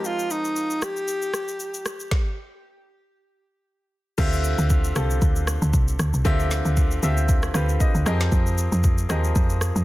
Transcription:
Already playing: grand piano F3 G#3 C4 D#4 G4 A#4
0.05 alto saxophone F4, shaker
0.19 shaker
0.30 alto saxophone D#4, shaker
0.45 shaker
0.56 shaker
0.70 shaker
0.82 alto saxophone G4, cross-stick, shaker
0.97 shaker
1.08 shaker
1.22 shaker
1.34 cross-stick, shaker
1.48 shaker
1.60 shaker
1.74 shaker
1.86 cross-stick, shaker
2.00 shaker
2.11 kick, snare
4.18 log drum bass D2, grand piano D3 C4 F4 G4 E5, kick, crash, shaker
4.33 shaker
4.44 shaker
4.58 log drum bass D2, shaker
4.70 kick, shaker
4.84 shaker
4.95 log drum bass C2, grand piano D3 C4 F4 G4 A4, cross-stick, shaker
5.10 shaker
5.22 log drum bass D2, kick, shaker
5.36 shaker
5.47 cross-stick, shaker
5.62 log drum bass D2, shaker
5.74 log drum bass C2, kick, shaker
5.88 shaker
5.99 log drum bass D2, cross-stick, shaker
6.14 log drum bass C2, shaker
6.25 log drum bass D2, grand piano D3 C4 F4 G4 E5, kick, shaker
6.40 shaker
6.51 snare, shaker
6.65 log drum bass D2, shaker
6.77 kick, shaker
6.91 shaker
7.02 log drum bass D2, grand piano D3 C4 F4 G4 E5, shaker
7.17 shaker
7.29 kick, shaker
7.43 cross-stick, shaker
7.54 log drum bass D2, grand piano D3 C4 F4 G4 B4, cross-stick, shaker
7.69 shaker
7.80 grand piano D#5, kick, shaker
7.95 log drum bass D2, shaker
8.06 log drum bass F2, grand piano F3 C4 G4 G#4 A#4 D#5, cross-stick, shaker
8.20 snare, shaker
8.32 log drum bass F2, kick, shaker
8.47 shaker
8.58 shaker
8.72 log drum bass F2, shaker
8.84 kick, shaker
8.98 shaker
9.09 log drum bass D#2, grand piano F3 C4 G4 G#4 A#4 D#5, cross-stick, shaker
9.24 shaker
9.36 log drum bass F2, kick, shaker
9.50 shaker
9.61 cross-stick, shaker
9.76 log drum bass F2, shaker

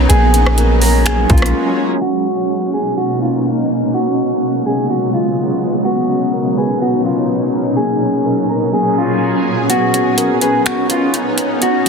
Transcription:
Already playing: ambient pad F#3
0.09 808-style bass A#1, ambient pad G#3 C#4, synth keys A#3, clean electric guitar G#4, closed hi-hat
0.34 synth keys C#4, closed hi-hat
0.46 cross-stick
0.58 synth keys A#4, closed hi-hat
0.82 clean electric guitar A#4, synth keys A#5, open hi-hat
1.05 synth keys A#3, clean electric guitar G#4, finger snap, closed hi-hat
1.30 808-style bass A#1, synth keys C#4, clean electric guitar F4, kick, closed hi-hat
1.38 closed hi-hat
1.42 cross-stick, closed hi-hat
1.78 synth keys C#4
2.01 ambient pad B2 A#3 C#4 D#4, clean electric guitar F#4
2.74 clean electric guitar G#4
2.97 clean electric guitar F#4
3.22 clean electric guitar F4
3.94 ambient pad C#3 F#3 G#3 B3, clean electric guitar F#4
4.66 clean electric guitar G#4
4.90 clean electric guitar F#4
5.14 clean electric guitar F4
5.85 ambient pad B2 F#3 C#4 D#4, synth keys B3, clean electric guitar F#4
6.09 synth keys C#4
6.34 synth keys A#4
6.58 clean electric guitar G#4, synth keys B4
6.81 synth keys B3, clean electric guitar F#4
7.05 synth keys C#4, clean electric guitar F4
7.54 synth keys C#4
7.76 ambient pad A#2 G#4, synth keys A#3, clean electric guitar G#4
8.02 synth keys C#4
8.26 synth keys A#4
8.49 clean electric guitar A#4, synth keys A#5
8.73 synth keys A#3, clean electric guitar G#4
8.98 synth keys C#4, clean electric guitar F4
9.45 synth keys C#4
9.70 ambient pad B3 C#4 D#4, synth keys B3, clean electric guitar F#4, closed hi-hat
9.94 synth keys C#4, closed hi-hat
10.18 synth keys A#4, closed hi-hat
10.41 clean electric guitar G#4, synth keys B4, closed hi-hat
10.66 synth keys B3, clean electric guitar F#4, finger snap, closed hi-hat
10.89 synth keys C#4, clean electric guitar F4, closed hi-hat
11.14 closed hi-hat
11.38 synth keys C#4, closed hi-hat
11.62 synth keys C#4, clean electric guitar F#4, closed hi-hat
11.86 synth keys F#3

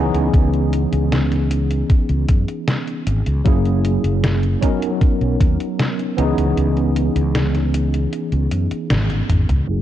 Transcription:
Already playing: tine electric piano E3 B3 C#4 D#4 G#4
0.14 fretless electric bass C#2, closed hi-hat
0.34 fretless electric bass C#2, kick, closed hi-hat
0.54 closed hi-hat
0.73 closed hi-hat
0.92 fretless electric bass C#2, closed hi-hat
1.12 snare, closed hi-hat
1.32 snare, closed hi-hat
1.51 closed hi-hat
1.71 closed hi-hat
1.90 kick, closed hi-hat
2.09 fretless electric bass C#2, closed hi-hat
2.28 fretless electric bass F#2, kick, closed hi-hat
2.48 closed hi-hat
2.68 snare, closed hi-hat
2.87 closed hi-hat
3.07 fretless electric bass G#1, closed hi-hat
3.26 fretless electric bass C#2, closed hi-hat
3.44 fretless electric bass F#1, tine electric piano F#3 A#3 C#4 E4 G#4, kick, closed hi-hat
3.66 closed hi-hat
3.85 closed hi-hat
4.04 fretless electric bass F#1, closed hi-hat
4.24 snare, closed hi-hat
4.43 closed hi-hat
4.61 tine electric piano F#3 B3 C#4 D#4 A#4, kick, closed hi-hat
4.82 closed hi-hat
5.01 muted fretless electric bass stroke, kick, closed hi-hat
5.21 fretless electric bass B1, closed hi-hat
5.40 fretless electric bass D#2, kick, closed hi-hat
5.60 closed hi-hat
5.79 snare, closed hi-hat
5.99 closed hi-hat
6.17 fretless electric bass C#2, tine electric piano E3 B3 C#4 D#4 G#4, closed hi-hat
6.38 fretless electric bass C#2, closed hi-hat
6.57 fretless electric bass C#2, closed hi-hat
6.77 closed hi-hat
6.96 closed hi-hat
7.16 fretless electric bass C#2, closed hi-hat
7.35 snare, closed hi-hat
7.55 snare, closed hi-hat
7.74 closed hi-hat
7.94 closed hi-hat
8.13 closed hi-hat
8.32 fretless electric bass C#2, closed hi-hat
8.51 fretless electric bass F#2, closed hi-hat
8.71 muted fretless electric bass stroke, closed hi-hat
8.90 fretless electric bass G#1, snare, closed hi-hat
9.10 closed hi-hat, high tom
9.29 fretless electric bass G#1, closed hi-hat, mid tom
9.49 fretless electric bass C#2, closed hi-hat, mid tom
9.67 fretless electric bass F#1, tine electric piano F#3 A#3 C#4 E4 G#4, closed hi-hat

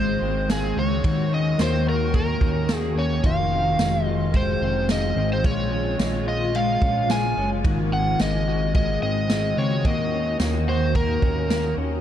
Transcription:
Already playing: analog synth bass G#1, clean electric guitar D#3 G#3 C4 F#4, ambient pad D#3 G#3 C4 F#4, electric slide guitar C5
0.21 analog synth bass G#1, clean electric guitar C4
0.49 clean electric guitar G#3, electric slide guitar G#4, snare, ride, tambourine
0.76 analog synth bass C#2, electric slide guitar C#5
1.03 analog synth bass D#2, clean electric guitar D#3 F#4, ambient pad A#3 C#4, kick, ride
1.32 clean electric guitar C#4, electric slide guitar D#5
1.59 analog synth bass D#2, clean electric guitar A#3, electric slide guitar C5, snare, ride, tambourine
1.87 clean electric guitar F#4, electric slide guitar A#4
2.14 clean electric guitar A#3, electric slide guitar A#4, kick, ride
2.41 analog synth bass D#2, clean electric guitar C#4, kick
2.69 clean electric guitar A#3, snare, ride, tambourine
2.77 electric slide guitar G#4
2.95 analog synth bass D#2, clean electric guitar C#4, electric slide guitar C#5
3.24 analog synth bass F1, clean electric guitar D#3 F4, ambient pad G#3 C4 F4, electric slide guitar F5, kick, ride
3.52 clean electric guitar C4
3.78 analog synth bass F1, clean electric guitar G#3, snare, ride, tambourine
4.04 clean electric guitar F4, electric slide guitar D#5
4.34 clean electric guitar G#3, electric slide guitar C5, kick, ride
4.61 analog synth bass F1, clean electric guitar C4
4.89 clean electric guitar G#3, electric slide guitar D#5, snare, ride, tambourine
5.16 analog synth bass G#1, clean electric guitar C4
5.33 electric slide guitar C5
5.43 analog synth bass A#1, ambient pad C#3 A#3, clean electric guitar G#3 F4, electric slide guitar C#5, kick, ride
5.72 clean electric guitar C#4
5.99 analog synth bass A#1, clean electric guitar G#3, snare, ride, tambourine
6.27 clean electric guitar F4, electric slide guitar D#5
6.55 clean electric guitar G#3, electric slide guitar F5, ride
6.82 analog synth bass A#1, clean electric guitar C#4, kick
7.10 clean electric guitar G#3, electric slide guitar G#5, snare, ride, tambourine
7.37 analog synth bass F#1, clean electric guitar C#4
7.64 analog synth bass G#1, ambient pad D#3 G#3 C4 F#4, clean electric guitar D#3 F#4, kick, ride
7.93 clean electric guitar C4, electric slide guitar F#5
8.19 analog synth bass G#1, clean electric guitar G#3, electric slide guitar D#5, snare, ride, tambourine
8.48 clean electric guitar F#4
8.75 clean electric guitar G#3, electric slide guitar D#5, kick, ride
9.02 analog synth bass G#1, clean electric guitar C4, electric slide guitar D#5
9.30 clean electric guitar G#3, snare, ride, tambourine
9.57 analog synth bass C#2, clean electric guitar C4, electric slide guitar C#5
9.84 analog synth bass D#2, ambient pad A#3 C#4, clean electric guitar A#3 F#4, electric slide guitar D#5, kick, ride
10.13 clean electric guitar C#4
10.39 analog synth bass D#2, clean electric guitar A#3, snare, ride, tambourine
10.68 clean electric guitar F#4, electric slide guitar C5
10.95 clean electric guitar A#3, electric slide guitar A#4, kick, ride
11.22 analog synth bass D#2, clean electric guitar C#4, kick
11.50 clean electric guitar A#3, snare, ride, tambourine
11.77 analog synth bass D#2, clean electric guitar C#4

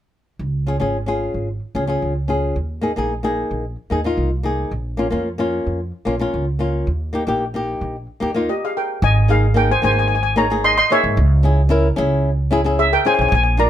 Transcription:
0.39 upright bass C#2
0.67 nylon-string guitar C#4 F4 G#4
0.80 upright bass G#1, nylon-string guitar C#4 F4 G#4
1.06 nylon-string guitar C#4 F4 G#4
1.34 upright bass G#1
1.75 upright bass C#2, nylon-string guitar C#4 F4 G#4
1.87 nylon-string guitar C#4 F4 G#4
2.02 upright bass C#2
2.28 nylon-string guitar C#4 F4 G#4
2.56 upright bass D#2
2.81 nylon-string guitar A#3 D#4 G#4
2.96 upright bass A#1, nylon-string guitar A#3 D#4 G#4
3.23 nylon-string guitar A#3 D#4 G#4
3.51 upright bass A#1
3.90 upright bass D#2, nylon-string guitar A#3 D#4 G#4
4.04 nylon-string guitar A#3 D#4 F4
4.17 upright bass C2
4.43 nylon-string guitar A#3 D#4 G#4
4.71 upright bass A#1
4.97 nylon-string guitar A#3 C#4 F4
5.10 upright bass F2, nylon-string guitar A#3 C#4 F4
5.38 nylon-string guitar A#3 C#4 F4
5.66 upright bass F2
6.05 upright bass A#1, nylon-string guitar A#3 C#4 F4
6.19 nylon-string guitar A#3 C#4 F4
6.34 upright bass C#2
6.59 nylon-string guitar A#3 C#4 F4
6.87 upright bass D#2
7.13 nylon-string guitar A#3 D#4 G4
7.27 upright bass A#1, nylon-string guitar A#3 D#4 G4
7.54 nylon-string guitar A#3 D#4 G4
7.81 upright bass A#1
8.20 upright bass D#2, nylon-string guitar A#3 D#4 G4
8.34 nylon-string guitar A#3 D#4 F4
8.49 steel pan G4 D#5
8.65 steel pan G#4 F5
8.77 steel pan A#4 G5
9.02 upright bass G#1, steel pan D#5 G#5
9.28 nylon-string guitar A#3 D#4 G#4, steel pan G#4 F5
9.54 nylon-string guitar A#3 D#4 G#4, steel pan A#4 G5
9.71 steel pan C5 G#5
9.82 upright bass G#1, nylon-string guitar A#3 D#4 G#4, steel pan C5 G#5
9.92 steel pan G#5
9.99 steel pan G#5
10.08 steel pan G#5
10.15 steel pan G#5
10.23 steel pan G#5
10.36 nylon-string guitar A#3 D#4 G#4, steel pan C#5 A#5
10.50 nylon-string guitar A#3 D#4 G#4
10.64 steel pan D#5 C6
10.78 steel pan D#5 C6
10.90 nylon-string guitar A#3 D#4 G#4, steel pan C#5 E5
11.04 upright bass G#2
11.17 upright bass C#2
11.43 nylon-string guitar C#4 E4 G#4
11.69 nylon-string guitar C#4 E4 A#4
11.96 upright bass C#2, nylon-string guitar C#4 E4 G#4
12.51 nylon-string guitar C#4 E4 G#4
12.64 nylon-string guitar C#4 E4 G#4
12.79 steel pan G#4 E5
12.93 steel pan A#4 G5
13.05 nylon-string guitar C#4 E4 G#4, steel pan C5 G#5
13.14 steel pan G#5
13.19 upright bass B1, steel pan G#5
13.29 upright bass A#1, steel pan G#5
13.35 steel pan G#5
13.44 steel pan G#5
13.57 nylon-string guitar D4 F4 A#4, steel pan D5 A#5

